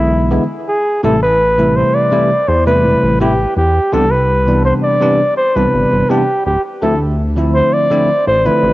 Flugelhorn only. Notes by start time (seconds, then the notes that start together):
Already playing: E4
0.68 G#4
1.04 A4
1.22 B4
1.76 C5
1.94 D5
2.48 C5
2.67 B4
3.21 G4
3.57 G4
3.93 A4
4.11 B4
4.65 C5
4.83 D5
5.37 C5
5.56 B4
6.10 G4
6.46 G4
6.82 A4
7.55 C5
7.73 D5
8.27 C5
8.46 B4